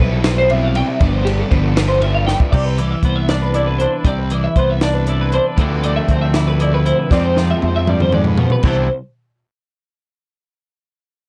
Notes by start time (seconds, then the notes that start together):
0.00 B1 C3 G3 C4 E4 B4, kick
0.12 A4
0.24 C4 E4 B4, snare, ride
0.29 G3
0.38 C5
0.49 C3 G3 C4 E5, ride
0.54 E4
0.63 F5
0.75 G3 C4 E4 G5, ride
0.88 E5
1.00 G1 G2 D3 F3 B3 D4 D5, kick, ride
1.13 C5
1.25 F3 B3 D4 G4, ride
1.39 A4
1.51 G1 D3 F3 B3 D4 B4, kick, ride
1.63 A4
1.76 F3 B3 D4 B4, snare, ride
1.89 C5
2.01 D3 F3 B3 D4 E5, ride
2.14 F5
2.26 F3 B3 D4 G5, snare
2.40 E5, kick
2.52 C2 C3 D5, kick, crash
2.65 B4
2.77 E3 D5, closed hi-hat
2.91 E5
3.03 C2 B3 C5, kick, closed hi-hat
3.16 E5
3.29 D4 D5, snare, closed hi-hat
3.42 B4
3.54 E4 D5, closed hi-hat
3.67 B4
3.79 D4 C5, closed hi-hat
3.92 B4
4.05 C2 C3 D5, kick, closed hi-hat
4.19 B4
4.30 E3 D5, closed hi-hat
4.44 E5
4.56 C2 B3 C5, kick, closed hi-hat
4.70 E5
4.81 D4 D5, snare, closed hi-hat
4.94 B4
5.07 E4 D5, closed hi-hat
5.21 B4
5.32 D4 C5, closed hi-hat
5.47 B4
5.57 D2 D3 F3 A3 D5, kick, closed hi-hat
5.61 A3 C4 D4 E4
5.71 B4
5.84 A3 D5, closed hi-hat
5.97 E5
6.09 D2 C4 C5, kick, closed hi-hat
6.22 E5
6.34 E4 D5, snare, closed hi-hat
6.48 B4
6.60 E4 D5, closed hi-hat
6.74 B4
6.86 E4 C5, closed hi-hat
6.99 B4
7.10 F2 C3 F3 G#3 C4 D5, kick, snare
7.25 C5
7.37 F3 D5, snare
7.50 E5
7.62 F2 C5, high tom
7.76 E5
7.87 G2 D5, mid tom
8.00 C5, mid tom
8.12 G#2 D5, mid tom
8.24 B4, floor tom
8.37 B2 C5, floor tom
8.50 B4, floor tom
8.62 C2 C3 E3 G3 B3 C4 E4 C5, kick, crash
8.67 D4 E4